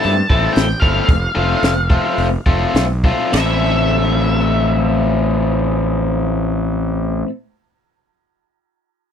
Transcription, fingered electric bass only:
0.05 G2
0.30 A1
0.56 A1
0.82 G1
1.09 F1
1.36 F1
1.63 F1
2.18 F1
2.47 F1
2.74 B1
3.34 A1

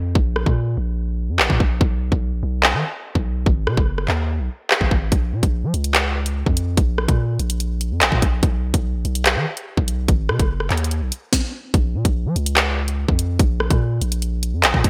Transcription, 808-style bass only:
Already playing: F2
0.15 A#1
0.46 A#2
0.77 A#1
1.29 F2
1.39 A#1
1.50 A#2
1.60 A#1
1.81 B1
2.12 B1
2.33 A#1
2.43 B1
2.74 D#3
3.15 B1
3.46 G#1
3.67 B2
3.77 F#1
4.08 D#2
4.39 B1
4.81 G#1
4.91 G#1
5.12 A#1
5.33 A#2
5.43 A#1
5.64 F3
5.74 C#2
6.46 F2
6.77 A#1
7.08 A#2
7.39 A#1
7.91 F2
8.02 A#1
8.12 A#2
8.22 A#1
8.43 B1
8.74 B1
8.95 A#1
9.05 B1
9.36 D#3
9.77 B1
10.08 G#1
10.29 B2
10.39 F#1
10.70 D#2
11.02 B1
11.74 A#1
11.95 A#2
12.05 A#1
12.26 F3
12.36 C#2
13.08 F2
13.39 A#1
13.70 A#2
14.02 A#1
14.53 F2
14.64 A#1
14.74 A#2
14.84 A#1

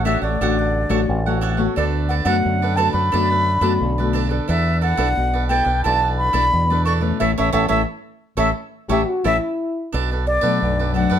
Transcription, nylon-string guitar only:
Already playing: A2
0.05 A3 C#4 F#4
0.41 D3 A3 F#4
0.90 A3 C#4 F#4
1.09 A2
1.27 A3 C#4 F#4
1.58 A3 B3 F#4
1.77 D3
2.26 A3 B3 F#4
2.45 D3
2.78 A3 B3 F#4
3.13 D3 A3 B3 F#4
3.62 A3 B3 F#4
3.82 D3
4.00 A3 B3 F#4
4.30 B3 D4 A4
4.50 E3
4.98 B3 D4 A4
5.17 B2
5.50 B3 D4 A4
5.85 E3 B3 D4 A4
6.34 B3 D4 A4
6.53 B2
6.71 B3 D4 A4
7.01 E3 A3 C#4
7.20 E3 A3 C#4
7.38 E3 A3 C#4
7.53 E3 A3 C#4
7.69 E3 A3 C#4
8.37 E3 A3 C#4
8.89 E3 A3 C#4
9.24 E3 A3 C#4
9.93 B2
10.42 F#3 A3 D4
10.62 F#2
10.95 F#3 A3 D4

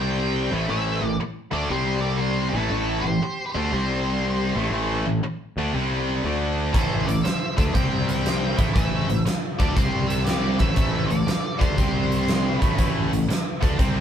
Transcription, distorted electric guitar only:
Already playing: C3 G3 C4
0.51 A2 E3 A3
0.69 A2 E3 A3
1.02 A2 E3
1.21 muted distorted electric guitar stroke
1.51 D3 A3 D4
1.71 C3 G3 C4
2.55 A2 E3 A3
2.71 A2 E3 A3
3.06 A2 E3
3.23 muted distorted electric guitar stroke
3.55 D3 A3 D4
3.72 C3 G3 C4
4.56 A2 E3 A3
4.73 A2 E3 A3
5.06 A2 E3
5.23 muted distorted electric guitar stroke
5.58 D3 A3 D4
5.74 C3 G3 C4
6.25 D3 A3 D4
6.74 A2 E3 A3
7.07 A2 E3
7.24 muted distorted electric guitar stroke
7.57 D3 A3 D4
7.73 C3 G3 C4
8.57 A2 E3 A3
8.75 A2 E3 A3
9.09 A2 E3
9.26 muted distorted electric guitar stroke
9.59 D3 A3 D4
9.76 C3 G3 C4
10.59 A2 E3 A3
10.77 A2 E3 A3
11.11 A2 E3
11.28 muted distorted electric guitar stroke
11.59 D3 A3 D4
11.77 C3 G3 C4
12.60 A2 E3 A3
12.77 A2 E3 A3
13.11 A2 E3
13.29 muted distorted electric guitar stroke
13.61 D3 A3 D4
13.78 C3 G3 C4

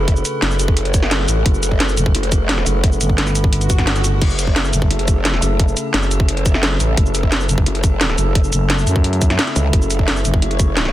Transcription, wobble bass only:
Already playing: F#1
0.42 F#1
1.28 A1
1.46 F#1
2.15 F#1
2.66 F#1
4.22 F#1
4.91 F#1
5.42 F#1
5.94 F#1
6.80 A1
6.97 F#1
7.66 F#1
8.18 F#1
9.56 C#2
9.73 F#1
10.42 F#1

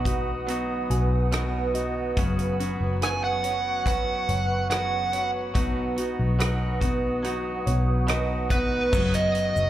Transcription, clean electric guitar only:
0.05 B3 D#4 F#4
0.47 F#3 B3 D#4 F#4
1.32 B2 F#3 B3 D#4 F#4
1.74 B3 D#4 F#4
2.17 F#2 C#3 F#3 B3 C#4 F#4
2.60 F#3 B3 C#4 F#4
3.02 F#2 C#3 F#3 B3 C#4 F#4
3.43 F#3 B3 C#4 F#4
3.86 F#3 B3 C#4 F#4
4.70 F#2 C#3 F#3 B3 C#4 F#4
5.12 F#3 B3 C#4 F#4
5.54 B2 F#3 B3 D#4 F#4
5.96 B3 D#4 F#4
6.39 B2 F#3 B3 D#4 F#4
6.81 B3 D#4 F#4
7.23 F#3 B3 D#4 F#4
8.07 B2 F#3 B3 D#4 F#4
8.49 B3 D#4 F#4
8.92 F#2 C#3 F#3 B3 C#4 F#4

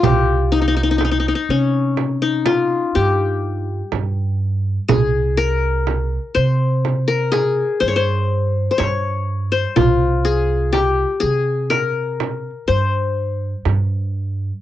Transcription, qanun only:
Already playing: F4
0.04 G4
0.52 D#4
0.62 D#4
0.68 D#4
0.77 D#4
0.83 D#4
0.91 D#4
0.98 D#4
1.05 D#4
1.12 D#4
1.20 D#4
1.28 D#4
1.35 D#4
1.50 C#4
2.22 D#4
2.46 F4
2.95 G4
4.88 G#4
5.37 A#4
6.35 C5
7.08 A#4
7.32 G#4
7.80 C5
7.88 C#5
7.96 C5
8.71 C5
8.78 C#5
9.52 C5
9.76 F4
10.25 G#4
10.73 G4
11.20 G#4
11.70 A#4
12.68 C5

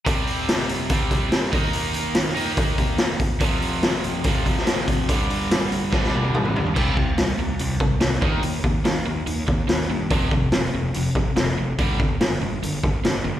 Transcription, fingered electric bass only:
6.76 C2
6.97 C2
7.18 C2
7.38 C2
7.60 C2
7.80 C2
8.00 C2
8.22 D#2
8.43 D#2
8.63 D#2
8.85 D#2
9.06 D#2
9.27 D#2
9.48 D#2
9.68 D#2
9.89 G2
10.10 F1
10.31 F1
10.52 F1
10.73 F1
10.93 F1
11.15 F1
11.35 F1
11.57 F1
11.79 G1
11.99 G1
12.21 G1
12.41 G1
12.63 G1
12.83 G1
13.04 G1
13.24 G1

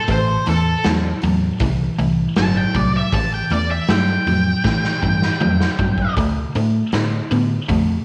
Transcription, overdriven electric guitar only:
0.09 A2 E3
0.47 A2 E3
0.84 A2 F#3
1.24 A2 F#3
1.61 A2 E3
1.99 A2 E3
2.37 A2 F#3
2.75 A2 F#3
3.14 A2 E3
3.52 A2 E3
3.90 A2 F#3
4.27 A2 F#3
4.65 A2 E3
5.02 A2 E3
5.41 A2 F#3
5.79 A2 F#3
6.17 D3 A3
6.56 D3 A3
6.93 D3 B3
7.31 D3 B3
7.68 D3 A3

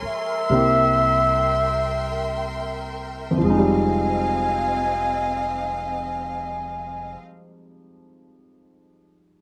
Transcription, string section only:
Already playing: A#4 C#5 G#5 C6
0.50 E5 G5
3.43 C4 D#5 F5

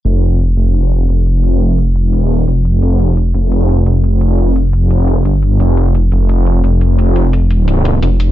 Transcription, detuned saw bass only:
0.05 F1
0.57 F1
1.09 F1
2.06 E1
2.33 D#1
2.48 F1
2.82 F1
3.34 F1
3.86 F1
5.25 G1
5.60 F1
6.12 F1
6.64 F1
8.03 F1

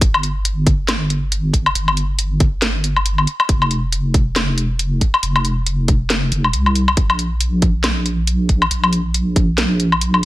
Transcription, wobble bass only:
0.01 G1
1.54 G1
1.75 G1
3.49 F1
4.36 F1
5.23 F1
6.32 F1
6.54 C2
6.97 A#1
8.49 A#1
8.71 A#1

